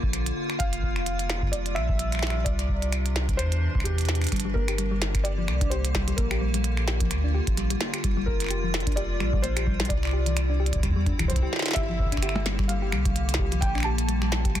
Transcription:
Already playing: D3 A#3 F4
0.03 A#1, kick
0.13 finger snap, closed hi-hat
0.26 closed hi-hat
0.50 finger snap
0.59 F1 C3 G3 F5, kick, closed hi-hat
0.73 closed hi-hat
0.83 kick
0.96 finger snap
1.06 closed hi-hat
1.19 closed hi-hat
1.30 finger snap, snare
1.43 kick
1.45 kick
1.47 kick
1.49 D5, kick
1.53 closed hi-hat
1.66 closed hi-hat
1.75 A#1 E5, finger snap
1.89 kick
1.99 closed hi-hat
2.12 finger snap, closed hi-hat
2.15 finger snap
2.19 finger snap
2.23 finger snap, snare
2.27 finger snap
2.30 finger snap
2.44 C2 E3 D4 D5, kick, closed hi-hat
2.59 finger snap, closed hi-hat
2.69 kick
2.82 closed hi-hat
2.92 finger snap, closed hi-hat
3.06 closed hi-hat
3.16 snare
3.29 kick, closed hi-hat
3.37 E2 C5, finger snap, closed hi-hat
3.52 closed hi-hat
3.75 C2, kick
3.80 G4, finger snap
3.85 E2, closed hi-hat
3.98 closed hi-hat
4.01 closed hi-hat
4.05 snare, closed hi-hat
4.09 closed hi-hat
4.15 closed hi-hat
4.22 finger snap, closed hi-hat
4.24 closed hi-hat
4.27 closed hi-hat
4.29 G1 G3, finger snap, kick, closed hi-hat
4.32 D3 A#3 G4, closed hi-hat
4.36 closed hi-hat
4.40 closed hi-hat
4.45 G3
4.54 A#3 A#4, kick
4.68 G4, finger snap, closed hi-hat
4.78 G3, closed hi-hat
4.91 G3
5.02 snare, closed hi-hat
5.15 finger snap, kick, closed hi-hat
5.24 G4 D5, closed hi-hat
5.38 F3
5.48 C2, finger snap
5.61 D4, kick, closed hi-hat
5.70 G4 C5, closed hi-hat
5.85 closed hi-hat
5.95 G3, finger snap, kick, snare
6.08 G3, closed hi-hat
6.17 A#1 A#3 F4 A#4, kick, closed hi-hat
6.31 G4, finger snap
6.41 G3
6.54 G3, closed hi-hat
6.64 closed hi-hat
6.77 finger snap
6.88 G4, snare, closed hi-hat
7.01 F3, kick, closed hi-hat
7.11 D2, finger snap, closed hi-hat
7.24 D4
7.34 G4
7.47 A#1, kick, closed hi-hat
7.57 G3, finger snap, closed hi-hat
7.70 G3, closed hi-hat
7.81 A#3, snare
7.94 G4, finger snap, closed hi-hat
8.04 F1 C3 G3, kick, closed hi-hat
8.17 G3
8.26 A#4, kick
8.40 finger snap, closed hi-hat
8.42 finger snap
8.44 finger snap
8.46 finger snap
8.48 G4, finger snap, closed hi-hat
8.64 F3
8.74 finger snap, snare, closed hi-hat
8.80 closed hi-hat
8.87 D4, kick, closed hi-hat
8.92 D5, closed hi-hat
8.97 G4, closed hi-hat
9.20 A#1 G3, finger snap
9.33 G3, kick
9.42 A#3 C5, closed hi-hat
9.56 G4, finger snap, closed hi-hat
9.67 G3, kick
9.80 G3, snare
9.85 D5, closed hi-hat
9.90 C2 D3 C4 E4, kick, closed hi-hat
10.03 finger snap
10.05 finger snap
10.07 finger snap
10.09 finger snap
10.11 G4, finger snap
10.26 E3, closed hi-hat
10.37 finger snap, closed hi-hat
10.50 D4
10.60 G4
10.66 closed hi-hat
10.73 kick, closed hi-hat
10.75 kick
10.80 E2 G3, kick
10.83 finger snap, kick, closed hi-hat
10.87 kick
10.91 kick
10.96 G3
11.06 D4, kick, closed hi-hat
11.19 C2 E3, finger snap, kick, closed hi-hat
11.22 kick
11.24 kick
11.27 G3 C5, kick
11.30 kick, closed hi-hat
11.33 kick, closed hi-hat
11.36 kick
11.39 G4, kick
11.53 G4, snare
11.56 snare
11.59 snare
11.62 finger snap, snare
11.66 snare, closed hi-hat
11.68 snare
11.71 snare
11.73 G1 A#3 G4 E5, finger snap, kick, snare, closed hi-hat
11.89 F3
11.99 kick
12.06 kick
12.12 D4, finger snap, kick, closed hi-hat
12.17 finger snap, kick
12.23 G4, finger snap, closed hi-hat
12.29 finger snap
12.36 percussion blips
12.46 G3, snare, closed hi-hat
12.59 G3, finger snap, kick
12.68 G3 F5, closed hi-hat
12.82 G4
12.92 C2 G3, finger snap
13.05 G3, kick, closed hi-hat
13.16 closed hi-hat
13.29 closed hi-hat
13.34 snare
13.39 G4, kick
13.52 F3, closed hi-hat
13.61 A#1 F4 G5, kick, closed hi-hat
13.75 D4, finger snap
13.78 finger snap
13.80 finger snap
13.83 G4 A5, finger snap
13.98 closed hi-hat
14.09 G3, closed hi-hat
14.22 G3, finger snap
14.32 G3, snare, closed hi-hat
14.45 G4, kick, closed hi-hat
14.55 D2 G3, finger snap, closed hi-hat

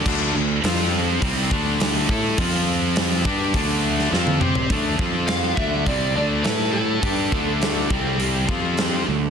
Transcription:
0.05 D2 D3 A3 D4, kick, crash
0.35 D2 D3 A3
0.64 F2 F3 C4 F4, snare, open hi-hat
1.22 C2 C3 G3 C4, kick, open hi-hat
1.51 D2 D3 A3 D4, kick
1.80 snare, open hi-hat
2.09 A2 A3 E4 A4, kick
2.38 F2 F3 C4 F4, kick, open hi-hat
2.96 snare, open hi-hat
3.25 G2 G3 D4 G4, kick
3.54 D2 D3 A3 D4, kick, open hi-hat
3.99 snare
4.12 F2 F3 C4 F4, snare
4.27 high tom
4.41 C3 C4 G4 C5, mid tom
4.55 floor tom
4.70 D2 D3 A3 D4, kick, open hi-hat
4.99 F2 F3 C4 F4, kick
5.28 F5, snare, open hi-hat
5.56 D2 D3 A3 D4 E5, kick
5.86 C2 C3 G3 C4 D5, kick, open hi-hat
6.15 D2 D3 A3 D4 D5
6.43 A2 A3 E4 A4 B4, snare, open hi-hat
6.72 A4
7.03 G2 G3 D4 G4, kick, open hi-hat
7.32 D2 D3 A3 D4, kick
7.61 snare, open hi-hat
7.90 C2 C3 G3 C4, kick
8.20 G4, open hi-hat
8.48 F2 F3 C4 F4, kick
8.77 snare, open hi-hat
9.07 D2 D3 A3

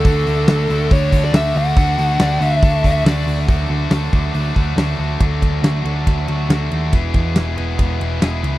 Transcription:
Already playing: A4
0.04 D2 D3 A3 D4 F#4, kick, open hi-hat
0.26 D2 A3 D4 F#4, open hi-hat
0.47 D2 D3 A3 D4 F#4, snare, open hi-hat
0.69 D2 A3 D4 F#4, snare, open hi-hat
0.91 D2 D3 A3 D4 F#4 C#5, kick, open hi-hat
1.12 D2 A3 D4 F#4, kick, open hi-hat
1.25 D5
1.33 D2 D3 A3 D4 F#4 E5, snare, open hi-hat
1.55 D2 F#5, open hi-hat
1.76 D2 D3 A3 D4 F#4, kick, open hi-hat
1.98 D2 A3 D4 F#4, snare, open hi-hat
2.19 D2 D3 A3 D4 F#4 D5, snare, open hi-hat
2.40 D2 A3 D4 F#4 E5, open hi-hat
2.54 E5
2.63 D2 D3 A3 D4 F#4 A5, kick, open hi-hat
2.83 D2 A3 D4 F#4 E5, kick, open hi-hat
3.05 D2 D3 A3 D4 F#4 D5, snare, open hi-hat
3.27 D2, open hi-hat
3.48 D2 D3 F#3 A3 D4 F#4, kick, open hi-hat
3.69 D2 F#3 A3 D4 F#4
3.90 D2 D3 F#3 A3 D4 F#4, snare, open hi-hat
4.12 D2 D3 F#3 A3 D4 F#4, kick
4.33 D2 D3 A3 D4 F#4, open hi-hat
4.56 D2 F#3 A3 D4 F#4, kick
4.76 D2 D3 F#3 A3 D4 F#4, snare, open hi-hat
4.98 D2 A3 D4 F#4
5.20 D2 D3 F#3 A3 D4 F#4, kick, ride
5.42 D2 A3, kick, ride
5.62 D2 F#4, snare, ride
5.84 D2 D3 F#3 A3 D4 F#4, ride
6.07 D2 A3, kick, ride
6.28 D2 F#4, ride
6.49 D2 D3 F#3 A3 D4 F#4, snare, ride
6.71 D#2 F#4, ride
6.92 E1 E2 B2 E3 B3 E4 G#4, kick, ride
7.14 E2 G#3, kick, ride
7.35 E1 E4, snare, ride
7.57 E1 E2 B2 E3 B3 E4 G#4, ride
7.79 E1 G#3, kick, ride
8.00 E1 E4, ride
8.21 E1 E2 B2 E3 G#3 B3 E4 G#4, snare, ride
8.43 C#2 E4, ride

